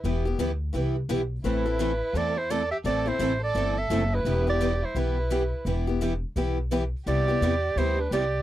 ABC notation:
X:1
M:4/4
L:1/16
Q:"Swing" 1/4=171
K:Em
V:1 name="Clarinet"
z16 | B8 d2 c2 d2 e2 | d2 c4 d4 e4 B2- | B2 d4 c2 B8 |
z16 | d8 c2 B2 d4 |]
V:2 name="Violin"
z16 | E8 A2 E2 A2 G2 | A2 E4 A4 A4 E2- | E2 G4 E2 E8 |
z16 | G8 E2 D2 G4 |]
V:3 name="Steel-string acoustic guitar"
[E,B,EGB]2 z2 [E,B,EGB] z3 [E,B,EGB]2 z2 [E,B,EGB] z3 | [E,A,CEA]2 z2 [E,A,CEA] z3 [E,A,CEA]2 z2 [E,A,CEA] z3 | [E,A,CEA]2 z2 [E,A,CEA] z3 [E,A,CEA]2 z2 [E,A,CEA] z3 | [E,B,EGB]2 z2 [E,B,EGB] z3 [E,B,EGB]2 z2 [E,B,EGB] z3 |
[E,B,EGB]2 z2 [E,B,EGB] z3 [E,B,EGB]2 z2 [E,B,EGB] z3 | [C,G,B,EG]2 z2 [C,G,B,EG] z3 [C,G,B,EG]2 z2 [C,G,B,EG] z3 |]
V:4 name="Steel-string acoustic guitar"
[E,B,EG]2 [B,EG]2 [E,B,EG] z3 [E,B,EG]2 z2 [E,B,EG] z3 | [E,A,CEA]2 [CEA]2 [E,A,CEA] z3 [E,A,CEA]2 z2 [E,A,CEA] z3 | [E,A,CEA]2 [CEA]2 [E,A,CEA] z3 [E,A,CEA]2 z2 [E,A,CEA] z3 | [E,B,EG]2 [B,EG]2 [E,B,EG] z3 [E,B,EG]2 z2 [E,B,EG] z3 |
[E,B,EG]2 [B,EG]2 [E,B,EG] z3 [E,B,EG]2 z2 [E,B,EG] z3 | [C,G,B,EG]2 [B,EG]2 [C,G,B,EG] z3 [C,G,B,EG]2 z2 [C,G,B,EG] z3 |]
V:5 name="Upright bass" clef=bass
E,,,4 D,,4 C,,4 B,,,4 | A,,,8 E,,8 | A,,,4 A,,,4 G,,,4 F,,,4 | E,,,8 B,,,8 |
E,,,8 B,,,8 | C,,4 E,,4 D,,4 C,,4 |]